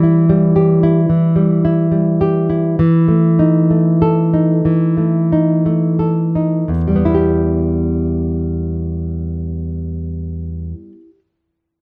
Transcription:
nylon-string guitar
Already playing: E3 G3
0.03 E4
0.29 G3
0.56 G4
0.83 E4
1.09 E3
1.36 G3
1.65 E4
1.92 G3
2.21 G4
2.50 E4
2.79 E3
3.08 A3
3.39 D#4
3.70 A3
4.02 A4
4.34 D#4
4.65 E3
4.97 A3
5.32 D#4
5.66 A3
5.99 A4
6.35 D#4
6.68 E2
6.87 G3
6.96 B3
7.05 E4
7.14 G4

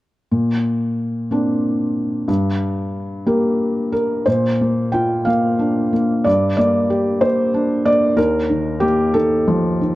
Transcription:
felt piano
0.31 A#2
1.31 A#3 C4 D4
2.28 G2
3.26 A#3 G4 A#4
3.92 A#4
4.26 A#2 C5
4.61 A#3
4.92 F4 G5
5.25 A#3 F5
5.59 D4
5.93 A#3
6.24 G2 D5
6.57 A#3 D5
6.90 G4
7.21 A#3 C5
7.54 D4
7.85 A#3 D5
8.17 D#2 A#4
8.50 D#3
8.80 A#3 G4
9.14 D#3 A4
9.48 F3
9.81 D#3

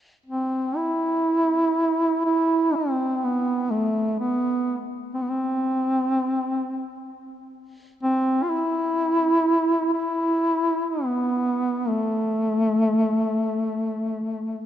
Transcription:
duduk
0.26 C4
0.77 E4
2.25 E4
2.75 C4
3.24 B3
3.71 A3
4.20 B3
5.14 C4
5.22 B3
5.29 C4
8.03 C4
8.43 F4
8.50 E4
9.93 E4
10.91 B3
11.88 A3

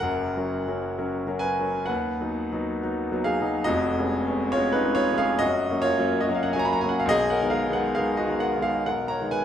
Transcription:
grand piano
0.00 F#1 F#2 A#4 F#5
0.36 F#3 C#4 A#4
0.67 F#3 C#4 A#4
0.98 F#3 C#4 A#4
1.27 F#3 C#4 A#4
1.39 B4 G#5
1.59 F#3 C#4 A#4
1.86 D#2 B4 F#5
2.21 F#3 B3 D#4
2.53 F#3 B3 D#4
2.83 F#3 B3 D#4
3.12 F#3 B3 D#4
3.24 G#4 F5
3.41 F#3 B3 D#4
3.64 F1 F2 F#4 D#5
3.98 G#3 B3 C#4
4.26 G#3 B3 C#4
4.52 G#3 B3 C#4 F4 C#5
4.73 D#4 B4
4.84 G#3 B3 C#4
4.95 F4 C#5
5.12 G#3 B3 C#4
5.18 G#4 F5
5.39 F#2 F#4 D#5
5.71 F#3 A#3 C#4
5.82 F4 C#5
5.99 F#3 A#3 C#4
6.21 F#4 D#5
6.29 F#3 A#3 C#4
6.35 F5
6.43 F#5
6.53 F#3 A#3 C#4 G#5
6.59 A#5
6.65 B5
6.73 A#5
6.81 F#3 A#3 C#4 G#5
6.89 F#5
7.00 F5
7.06 B1 D#5
7.10 G#4
7.30 A#4 F#5
7.41 D#3 G#3 B3
7.50 G#4 F5
7.69 D#3 G#3 B3
7.73 A#4 F#5
7.95 D#3 G#3 B3 G#4 F5
8.17 F#4 D#5
8.27 D#3 G#3 B3
8.40 A#4 F#5
8.58 D#3 G#3 B3
8.62 G#4 F5
8.86 B1 A#4 F#5
9.08 C#5 A#5
9.20 D#3 G#3 B3
9.31 B4 G#5

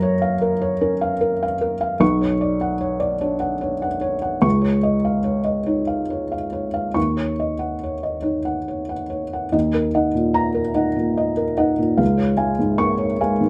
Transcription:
felt piano
Already playing: F#2 A#4 A#5
0.02 C#5
0.22 F5
0.42 A#4
0.62 C#5
0.81 C#4 A#4
1.01 F5
1.21 A#4
1.43 F5
1.61 A#4
1.81 F5
2.00 B1 C#6
2.21 C#5
2.41 D5
2.61 F#5
2.81 C#5
3.00 D5
3.21 D4 C#5
3.40 F#5
3.61 C#5
3.82 F#5
4.01 C#5
4.22 F#5
4.42 C#2 C#6
4.61 C#5
4.83 D#5
5.05 F5
5.24 C#5
5.44 D#5
5.66 D#4 C#5
5.87 F5
6.10 C#5
6.32 F5
6.53 C#5
6.74 F5
6.94 D#2 C#6
7.17 C#5
7.40 D#5
7.59 F#5
7.83 C#5
8.03 D#5
8.22 D#4 C#5
8.45 F#5
8.68 C#5
8.89 F#5
9.10 C#5
9.33 F#5
9.52 D#2 D#5
9.74 A#4
9.94 D#4 D#5 F#5
10.15 A#2
10.34 A#5
10.54 A#4
10.74 D#4 D#5 F#5
10.96 A#2
11.17 D#5
11.37 A#4
11.57 D#4 D#5 F#5
11.78 A#2
11.97 C#2 F5
12.17 C#5
12.37 G#3 F5 G#5
12.59 G#2
12.78 A#3 C#6
12.98 C#5
13.21 G#3 F5 G#5
13.41 G#2

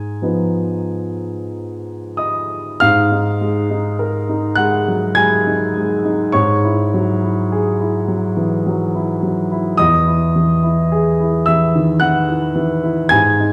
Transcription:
grand piano
Already playing: G#2 G#5
0.22 F3 B3 D#4 B4
2.17 D#5 D#6
2.80 G#2 F5 F6
3.12 D#4
3.41 G#3
3.70 D#4
3.99 A#4
4.29 D#4
4.55 G#3 F#5 F#6
4.88 F#3
5.15 G#3 G#5 G#6
5.47 D#4
5.77 G#3
6.05 D#4
6.32 G#2 C#5 C#6
6.64 E4
6.94 F#3
7.23 E4
7.52 G#4
7.80 E4
8.08 F#3
8.37 E3
8.66 F#3
8.95 E4
9.23 F#3
9.52 E4
9.77 E2 D#5 D#6
10.07 E4
10.36 E3
10.63 E4
10.92 G#4
11.20 E4
11.46 E3 E5 E6
11.75 D#3
12.00 E3 F#5 F#6
12.29 E4
12.55 E3
12.84 E4
13.09 G#2 G#5 G#6
13.40 D#4

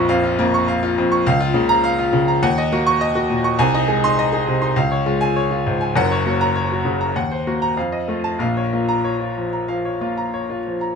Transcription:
grand piano
Already playing: A#1 F2 A#3 F4 F5 C#6
0.09 F2 F5
0.24 F4
0.39 F2 A#3
0.54 C#6
0.68 F5
0.83 F4
0.98 F2
1.12 C#6
1.27 C#2 F5
1.41 F4
1.54 C#3 A#3
1.69 A#5
1.84 F5
1.99 F4
2.13 C#3
2.28 A#5
2.43 D#2 F#5
2.58 D#5
2.72 A#3 F#4
2.87 C#6
3.01 D#5
3.15 F#4
3.30 A#2
3.44 C#6
3.59 C2 G#5
3.74 D#4 D#5
3.88 G#3 G#4
4.04 D#4 C6
4.19 D#5
4.33 D#4 G#4
4.47 C3
4.62 D#4 C6
4.76 C#2 F5
4.91 C#5
5.06 G#3 F4
5.21 G#5
5.36 C#5
5.51 F4
5.66 G#2
5.81 G#5
5.96 F#1 F#2 F#5
6.11 C#5
6.26 A#3 F#4
6.41 A#5
6.55 C#5
6.72 F#4
6.85 C#3
7.01 A#5
7.16 D#2 F#5
7.31 C5
7.47 A#3 F#4
7.62 A#5
7.77 F2 F5
7.92 D#5
8.08 A3 F4
8.24 A5
8.39 A#1 A#2 F5
8.57 C#5
8.73 A#3 F4
8.89 A#5
9.04 C#5
9.20 F4
9.37 F3
9.53 A#5
9.68 F3 F5
9.85 C#5
10.01 A#3 F4
10.18 A#5
10.34 C#5
10.50 F4
10.67 F3
10.81 A#5

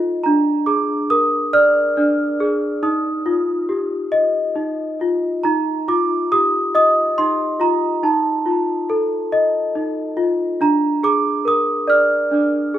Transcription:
celesta
Already playing: D#4 F4 A4 D#5
0.24 D4 A#5
0.66 G#4 D6
1.10 A#4 D#6
1.53 D5 F6
1.97 D4
2.40 G#4
2.83 D#4 D#6
3.26 F4
3.69 G4
4.12 D#5
4.56 D#4
5.01 F4
5.43 D#4 A#5
5.88 F4 D6
6.32 G4 D#6
6.75 D#5 D#6
7.18 D#4 C6
7.60 F4 A#5
8.03 D#4 A5
8.46 F4
8.90 A4
9.32 D#5
9.75 D#4
10.17 F4
10.61 D4 A#5
11.03 G#4 D6
11.45 A#4 D#6
11.87 D5 F6
12.32 D4
12.74 G#4

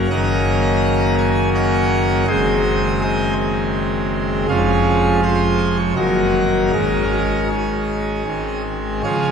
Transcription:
pipe organ
0.10 F#1 F#2 D#3 A#3 C#4 D#5 F#5 A#5
1.18 G#5
1.55 C#5 D#5 F#5
2.27 F#1 F#2 D#3 G#3 C4 G#4 C5 D#5
3.01 G#4 C5 D#5
4.48 F1 F2 F3 G#3 C#4 F4 G#4
5.23 F4 G#4 C5
5.78 C#5
5.96 F#1 F#2 D#3 F#3 A#3 D#4 F#4 A#4
6.72 G#1 G#2 D#3 G#3 C#4 D#4 A#4
7.49 C#4 D#4 G#4
8.26 G#1 G#2 D#3 G#3 C4
9.03 C#3 F3 G#3 C#4 F4 G#4 C#5

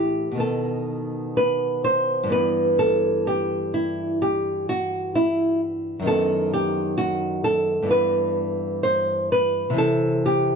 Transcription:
nylon-string guitar
Already playing: A2 E3 C4 G4
0.32 B2 D#3
0.37 B3 A4
1.37 B4
1.85 C5
2.23 G2 E3
2.30 B3 B4
2.79 A4
3.27 G4
3.74 E4
4.22 G4
4.69 F#4
5.15 E4
5.99 F#2 D#3
6.05 B3 A4
6.54 G4
6.98 F#4
7.44 A4
7.82 G2 E3
7.88 B3 B4
8.83 C5
9.32 B4
9.70 C3 E3
9.76 C4 A4
10.26 G4

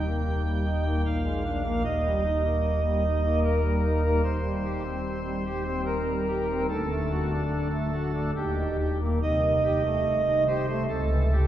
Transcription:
pipe organ
Already playing: D#1 D#2 G5
0.06 A#3
0.46 G3
0.66 D#4
0.86 A#3
1.05 A#1 A#2 F5
1.24 G#3
1.44 D4
1.64 A#3
1.84 D#1 D#2 D#5
2.04 G3
2.24 D#4
2.44 A#3
2.85 G3
3.04 D#4
3.25 A#3
3.44 A#4
3.64 G3
3.84 D#4
4.04 A#3
4.23 D#1 D#2 C5
4.43 G3
4.64 G4
4.84 C4
5.25 G3
5.45 G4
5.65 C4
5.86 A#4
6.07 G3
6.28 G4
6.49 C4
6.70 D1 D2 A4
6.91 A3
7.11 F#4
7.31 D4
7.72 A3
7.93 F#4
8.14 D4
8.35 D#1 D#2 G4
8.56 D#3
8.79 G4
9.01 A#3
9.23 C1 C2 D#5
9.44 D#3
9.64 G4
9.85 A3
10.26 D#3
10.47 G4 C5
10.69 A3
10.89 C#1 C#2 A4
11.11 E3
11.32 G4

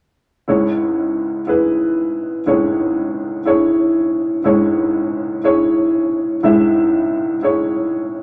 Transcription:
upright piano
0.48 C#2 G#2 E4 G#4 C#5
1.47 E4 G#4 B4
2.46 C#2 G#2 E4 G#4 C#5
3.45 E4 G#4 C#5
4.44 C#2 G#2 E4 G#4 C#5
5.44 E4 G#4 C#5
6.43 C#2 G#2 E4 G#4 E5
7.42 E4 G#4 C#5

